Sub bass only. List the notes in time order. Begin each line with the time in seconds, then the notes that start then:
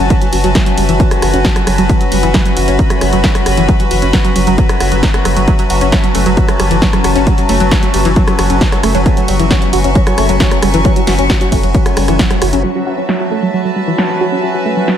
0.00 F#1
0.33 F#1
0.44 F#1
0.77 F#1
0.89 F#1
1.22 F#1
1.34 F#1
1.67 F#1
1.78 F#1
2.12 F#1
2.23 F#1
2.57 F#1
2.68 F#1
3.01 F#1
3.13 F#1
3.46 F#1
3.58 F#1
3.91 F#1
4.02 F#1
4.36 F#1
4.47 F#1
4.81 F#1
4.92 F#1
5.25 F#1
5.37 F#1
5.70 F#1
5.81 F#1
6.15 F#1
6.26 F#1
6.60 F#1
6.71 F#1
7.04 F#1
7.16 F#1
7.49 F#1
7.60 F#1
7.94 F#1
8.05 F#1
8.39 F#1
8.50 F#1
8.83 F#1
8.95 F#1
9.28 F#1
9.39 F#1
9.73 F#1
9.84 F#1
10.18 F#1
10.29 F#1
10.63 F#1
10.74 F#1
11.07 F#1
11.19 F#1
11.52 F#1
11.63 F#1
11.97 F#1
12.08 F#1
12.42 F#1
12.53 F#1